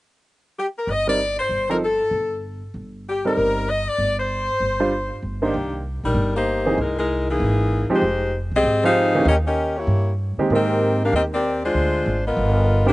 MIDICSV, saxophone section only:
0, 0, Header, 1, 2, 480
1, 0, Start_track
1, 0, Tempo, 310559
1, 875, Time_signature, 4, 2, 24, 8
1, 19982, End_track
2, 0, Start_track
2, 0, Title_t, "Saxophone section"
2, 0, Program_c, 0, 65
2, 905, Note_on_c, 0, 67, 71
2, 1032, Note_off_c, 0, 67, 0
2, 1200, Note_on_c, 0, 70, 71
2, 1359, Note_off_c, 0, 70, 0
2, 1397, Note_on_c, 0, 75, 91
2, 1671, Note_on_c, 0, 74, 88
2, 1675, Note_off_c, 0, 75, 0
2, 2112, Note_off_c, 0, 74, 0
2, 2147, Note_on_c, 0, 72, 78
2, 2591, Note_off_c, 0, 72, 0
2, 2642, Note_on_c, 0, 70, 66
2, 2720, Note_off_c, 0, 70, 0
2, 2846, Note_on_c, 0, 69, 72
2, 3726, Note_off_c, 0, 69, 0
2, 4781, Note_on_c, 0, 67, 79
2, 5033, Note_off_c, 0, 67, 0
2, 5065, Note_on_c, 0, 70, 81
2, 5666, Note_off_c, 0, 70, 0
2, 5719, Note_on_c, 0, 75, 94
2, 6002, Note_off_c, 0, 75, 0
2, 6004, Note_on_c, 0, 74, 91
2, 6476, Note_on_c, 0, 72, 85
2, 6477, Note_off_c, 0, 74, 0
2, 8036, Note_off_c, 0, 72, 0
2, 8395, Note_on_c, 0, 51, 59
2, 8400, Note_on_c, 0, 58, 59
2, 8401, Note_on_c, 0, 67, 73
2, 8405, Note_on_c, 0, 62, 59
2, 9010, Note_off_c, 0, 51, 0
2, 9013, Note_off_c, 0, 58, 0
2, 9014, Note_off_c, 0, 67, 0
2, 9016, Note_off_c, 0, 62, 0
2, 9339, Note_on_c, 0, 62, 72
2, 9343, Note_on_c, 0, 63, 71
2, 9349, Note_on_c, 0, 70, 83
2, 9350, Note_on_c, 0, 55, 74
2, 9790, Note_off_c, 0, 62, 0
2, 9792, Note_off_c, 0, 63, 0
2, 9795, Note_off_c, 0, 70, 0
2, 9796, Note_off_c, 0, 55, 0
2, 9836, Note_on_c, 0, 67, 75
2, 9840, Note_on_c, 0, 58, 73
2, 9842, Note_on_c, 0, 63, 74
2, 9843, Note_on_c, 0, 72, 81
2, 10449, Note_off_c, 0, 67, 0
2, 10452, Note_off_c, 0, 58, 0
2, 10453, Note_off_c, 0, 63, 0
2, 10453, Note_off_c, 0, 72, 0
2, 10505, Note_on_c, 0, 64, 71
2, 10506, Note_on_c, 0, 56, 72
2, 10509, Note_on_c, 0, 70, 87
2, 10511, Note_on_c, 0, 63, 75
2, 10783, Note_off_c, 0, 70, 0
2, 10786, Note_off_c, 0, 56, 0
2, 10786, Note_off_c, 0, 63, 0
2, 10786, Note_off_c, 0, 64, 0
2, 10801, Note_on_c, 0, 70, 80
2, 10804, Note_on_c, 0, 56, 67
2, 10804, Note_on_c, 0, 64, 64
2, 10805, Note_on_c, 0, 63, 68
2, 11241, Note_off_c, 0, 70, 0
2, 11242, Note_off_c, 0, 56, 0
2, 11242, Note_off_c, 0, 63, 0
2, 11242, Note_off_c, 0, 64, 0
2, 11283, Note_on_c, 0, 52, 75
2, 11290, Note_on_c, 0, 63, 75
2, 11290, Note_on_c, 0, 68, 92
2, 11298, Note_on_c, 0, 58, 69
2, 12171, Note_off_c, 0, 52, 0
2, 12174, Note_off_c, 0, 68, 0
2, 12175, Note_off_c, 0, 63, 0
2, 12178, Note_off_c, 0, 58, 0
2, 12273, Note_on_c, 0, 67, 84
2, 12276, Note_on_c, 0, 56, 74
2, 12277, Note_on_c, 0, 63, 78
2, 12278, Note_on_c, 0, 72, 98
2, 12911, Note_off_c, 0, 67, 0
2, 12913, Note_off_c, 0, 56, 0
2, 12913, Note_off_c, 0, 63, 0
2, 12914, Note_off_c, 0, 72, 0
2, 13231, Note_on_c, 0, 68, 82
2, 13233, Note_on_c, 0, 67, 80
2, 13234, Note_on_c, 0, 75, 100
2, 13236, Note_on_c, 0, 60, 88
2, 13654, Note_off_c, 0, 68, 0
2, 13655, Note_off_c, 0, 67, 0
2, 13656, Note_off_c, 0, 75, 0
2, 13657, Note_off_c, 0, 60, 0
2, 13680, Note_on_c, 0, 77, 94
2, 13685, Note_on_c, 0, 68, 88
2, 13691, Note_on_c, 0, 72, 87
2, 13696, Note_on_c, 0, 63, 90
2, 14288, Note_off_c, 0, 77, 0
2, 14290, Note_off_c, 0, 68, 0
2, 14294, Note_off_c, 0, 72, 0
2, 14296, Note_off_c, 0, 63, 0
2, 14343, Note_on_c, 0, 75, 98
2, 14349, Note_on_c, 0, 61, 84
2, 14353, Note_on_c, 0, 70, 80
2, 14356, Note_on_c, 0, 67, 82
2, 14472, Note_off_c, 0, 75, 0
2, 14476, Note_off_c, 0, 61, 0
2, 14479, Note_off_c, 0, 70, 0
2, 14482, Note_off_c, 0, 67, 0
2, 14627, Note_on_c, 0, 67, 79
2, 14634, Note_on_c, 0, 75, 86
2, 14638, Note_on_c, 0, 61, 77
2, 14641, Note_on_c, 0, 70, 79
2, 15069, Note_off_c, 0, 67, 0
2, 15073, Note_off_c, 0, 75, 0
2, 15075, Note_off_c, 0, 61, 0
2, 15077, Note_off_c, 0, 70, 0
2, 15110, Note_on_c, 0, 73, 86
2, 15120, Note_on_c, 0, 58, 72
2, 15123, Note_on_c, 0, 64, 74
2, 15128, Note_on_c, 0, 67, 70
2, 15632, Note_off_c, 0, 73, 0
2, 15636, Note_off_c, 0, 58, 0
2, 15638, Note_off_c, 0, 64, 0
2, 15641, Note_off_c, 0, 67, 0
2, 16305, Note_on_c, 0, 75, 92
2, 16306, Note_on_c, 0, 67, 80
2, 16309, Note_on_c, 0, 70, 86
2, 16311, Note_on_c, 0, 60, 87
2, 16995, Note_off_c, 0, 75, 0
2, 16996, Note_off_c, 0, 67, 0
2, 16997, Note_off_c, 0, 70, 0
2, 16998, Note_off_c, 0, 60, 0
2, 17062, Note_on_c, 0, 67, 76
2, 17065, Note_on_c, 0, 70, 82
2, 17071, Note_on_c, 0, 62, 78
2, 17071, Note_on_c, 0, 77, 85
2, 17222, Note_off_c, 0, 67, 0
2, 17224, Note_off_c, 0, 70, 0
2, 17227, Note_off_c, 0, 62, 0
2, 17227, Note_off_c, 0, 77, 0
2, 17236, Note_on_c, 0, 75, 94
2, 17242, Note_on_c, 0, 60, 78
2, 17243, Note_on_c, 0, 67, 75
2, 17243, Note_on_c, 0, 70, 78
2, 17360, Note_off_c, 0, 75, 0
2, 17365, Note_off_c, 0, 60, 0
2, 17366, Note_off_c, 0, 67, 0
2, 17366, Note_off_c, 0, 70, 0
2, 17531, Note_on_c, 0, 60, 81
2, 17531, Note_on_c, 0, 67, 81
2, 17531, Note_on_c, 0, 70, 77
2, 17535, Note_on_c, 0, 74, 93
2, 17959, Note_off_c, 0, 60, 0
2, 17959, Note_off_c, 0, 67, 0
2, 17959, Note_off_c, 0, 70, 0
2, 17961, Note_off_c, 0, 74, 0
2, 18005, Note_on_c, 0, 56, 81
2, 18006, Note_on_c, 0, 62, 83
2, 18012, Note_on_c, 0, 72, 94
2, 18014, Note_on_c, 0, 65, 83
2, 18885, Note_off_c, 0, 56, 0
2, 18885, Note_off_c, 0, 62, 0
2, 18888, Note_off_c, 0, 72, 0
2, 18889, Note_off_c, 0, 65, 0
2, 18966, Note_on_c, 0, 65, 88
2, 18966, Note_on_c, 0, 75, 103
2, 18972, Note_on_c, 0, 70, 86
2, 18974, Note_on_c, 0, 59, 82
2, 19905, Note_off_c, 0, 75, 0
2, 19906, Note_off_c, 0, 65, 0
2, 19908, Note_off_c, 0, 70, 0
2, 19910, Note_off_c, 0, 59, 0
2, 19911, Note_on_c, 0, 67, 87
2, 19912, Note_on_c, 0, 51, 79
2, 19914, Note_on_c, 0, 62, 77
2, 19918, Note_on_c, 0, 58, 74
2, 19982, Note_off_c, 0, 51, 0
2, 19982, Note_off_c, 0, 58, 0
2, 19982, Note_off_c, 0, 62, 0
2, 19982, Note_off_c, 0, 67, 0
2, 19982, End_track
0, 0, End_of_file